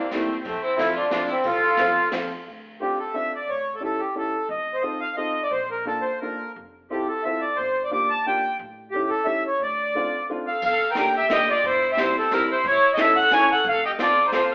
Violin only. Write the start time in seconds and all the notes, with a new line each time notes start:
Already playing: D4
0.13 C4
0.44 C4
0.64 E4
0.79 A4
0.94 F4
1.11 F4
1.28 E4
1.44 A4
10.47 A4
10.63 A4
10.91 A#4
10.98 A#4
11.15 G4
11.31 G4
11.50 F4
11.67 E4
11.93 G4
11.99 E4
12.17 C4
12.33 E4
12.50 E4
12.67 E4
12.94 F#4
13.03 A4
13.21 A4
13.36 C#5
13.53 A4
13.70 A4
13.85 G4
14.02 F4
14.26 D#4
14.34 F4
14.51 A4